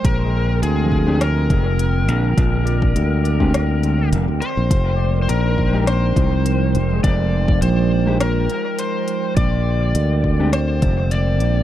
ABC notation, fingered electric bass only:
X:1
M:4/4
L:1/16
Q:"Swing 16ths" 1/4=103
K:Bbmix
V:1 name="Fingered electric bass" clef=bass
B,,,4 D,,6 F,,,4 B,,,2 | B,,,4 D,,8 F,,, D,, z B,,, | F,,,4 B,,,6 C,,4 F,,,2 | F,,,4 B,,,6 z6 |
B,,,4 D,,6 F,,,4 B,,,2 |]